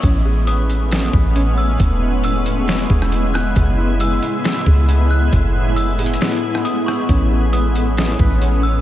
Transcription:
0.03 A1 A2 G#3 B3 C#4, kick, closed hi-hat
0.25 G#4
0.47 B4 D#6, closed hi-hat
0.70 closed hi-hat
0.91 snare, closed hi-hat
1.13 A1 B4, kick
1.35 C#4, closed hi-hat
1.58 E6
1.80 E1 C#3 E4, kick, closed hi-hat
2.24 E6, closed hi-hat
2.45 C#6, closed hi-hat
2.68 E4, snare, closed hi-hat
2.90 E1 G#4, kick
3.02 cross-stick
3.12 closed hi-hat
3.34 F#6, cross-stick
3.55 F#1 A2 B3, kick, closed hi-hat
3.78 E4
4.00 G#4 E6, closed hi-hat
4.22 closed hi-hat
4.44 snare, closed hi-hat
4.66 C#2 G#4, kick
4.88 B3, closed hi-hat
5.11 F#6
5.33 F#1, kick, closed hi-hat
5.76 E6, closed hi-hat
5.99 G#4, closed hi-hat, open hi-hat
6.06 closed hi-hat
6.14 closed hi-hat
6.20 B3, snare, closed hi-hat
6.43 E4
6.55 cross-stick
6.65 D#6, closed hi-hat
6.86 C#6, cross-stick
7.09 A1 G#3 C#4, kick, closed hi-hat
7.31 G#4
7.53 B4 D#6, closed hi-hat
7.75 closed hi-hat
7.97 snare, closed hi-hat
8.19 A1 B4, kick
8.41 C#4, closed hi-hat
8.63 E6

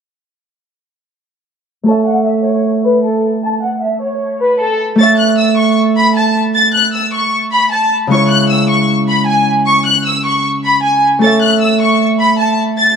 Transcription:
1.83 A3 A4
1.87 C#5 E5 A5
2.07 F#5
2.26 E5
2.46 C#5
2.85 B4
3.04 A4
3.43 A5
3.63 F#5
3.82 E5
4.02 C#5
4.41 B4
4.60 A4
4.95 A3 A4 A6
5.00 C#5 E5
5.19 F#6
5.38 E6
5.58 C#6
5.96 B5
6.16 A5
6.55 A6
6.74 F#6
6.94 E6
7.14 C#6
7.52 B5
7.72 A5
8.07 C#3 G#3 C#6
8.12 E4 C#5
8.30 F#6
8.50 E6
8.69 C#6
9.08 B5
9.27 G#5
9.66 C#6
9.86 F#6
10.06 E6
10.25 C#6
10.64 B5
10.83 G#5
11.19 A3 A4 A6
11.24 C#5 E5
11.42 F#6
11.62 E6
11.81 C#6
12.20 B5
12.39 A5
12.78 A6

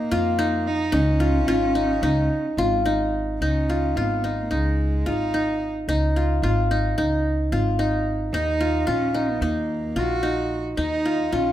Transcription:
Already playing: A#3 D#4 F4
0.11 F2 F4
0.39 D#4
0.67 D#4
0.92 C#2 C#4 D#4
1.20 F4
1.47 G#1 F4
1.75 D#4
2.02 C#2 D#4
2.57 G#1 F4
2.85 D#4
3.41 C#2 C#4 D#4
3.70 F4
3.96 G#1 B3 F4
4.24 D#4
4.39 A#3
4.51 C#2 G#3 D#4
5.06 G#1 D#4 F4
5.34 D#4
5.88 C#2 D#4
6.16 F4
6.42 G#1 F4
6.71 D#4
6.98 C#2 D#4
7.52 G#1 F4
7.79 D#4
8.33 D#2 D#4
8.61 F4
8.87 A#1 C#4 F4
9.14 D#4
9.29 B3
9.41 D#2 A#3 D#4
9.96 A#1 F4 F#4
10.23 D#4
10.77 D#2 D#4
11.05 F4
11.32 A#1 C#4 F4

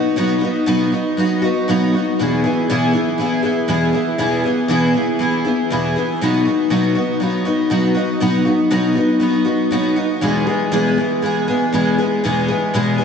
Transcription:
Already playing: B3 D#4 F#4
0.16 B2 F#3 B3 D#4 F#4
0.41 B3 D#4 F#4
0.66 B2 F#3 B3 D#4 F#4
0.92 B3 D#4 F#4
1.17 F#3 B3 D#4 F#4
1.42 B3 D#4 F#4
1.68 B2 F#3 B3 D#4 F#4
1.94 B3 D#4 F#4
2.19 E2 B2 E3 B3 E4 G#4
2.44 E3 B3 E4 G#4
2.70 E2 B2 E3 B3 E4 G#4
2.93 E3 B3 E4 G#4
3.18 E3 B3 E4 G#4
3.43 E3 B3 E4 G#4
3.68 E2 B2 E3 B3 E4 G#4
3.93 E3 B3 E4 G#4
4.18 E2 B2 E3 B3 E4 G#4
4.44 E3 B3 E4 G#4
4.68 E2 B2 E3 B3 E4 G#4
4.94 E3 B3 E4 G#4
5.19 E3 B3 E4 G#4
5.45 E3 B3 E4 G#4
5.70 E2 B2 E3 B3 E4 G#4
5.96 E3 B3 E4 G#4
6.21 B2 F#3 B3 D#4 F#4
6.45 B3 D#4 F#4
6.70 B2 F#3 B3 D#4 F#4
6.95 B3 D#4 F#4
7.20 F#3 B3 D#4 F#4
7.45 B3 D#4 F#4
7.70 B2 F#3 B3 D#4 F#4
7.95 B3 D#4 F#4
8.20 B2 F#3 B3 D#4 F#4
8.45 B3 D#4 F#4
8.71 B2 F#3 B3 D#4 F#4
8.95 B3 D#4 F#4
9.20 F#3 B3 D#4 F#4
9.45 B3 D#4 F#4
9.71 B2 F#3 B3 D#4 F#4
9.96 B3 D#4 F#4
10.21 E2 B2 E3 G#3 B3 G#4
10.47 E3 G#3 B3 G#4
10.72 E2 B2 E3 G#3 B3 G#4
10.98 E3 G#3 B3 G#4
11.22 E3 G#3 B3 G#4
11.48 E3 G#3 B3 G#4
11.72 E2 B2 E3 G#3 B3 G#4
11.98 E3 G#3 B3 G#4
12.24 E2 B2 E3 G#3 B3 G#4
12.48 E3 G#3 B3 G#4
12.74 E2 B2 E3 G#3 B3 G#4
12.98 E3 G#3 B3 G#4

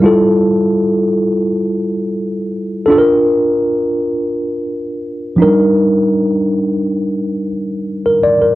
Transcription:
0.00 G3 E4 F4
0.06 A4
2.86 D4 F4 A4
2.92 A4
2.98 A#4
5.36 F3 D4 D#4
5.42 G3 A#4
8.06 A#4
8.23 D5
8.42 A#4

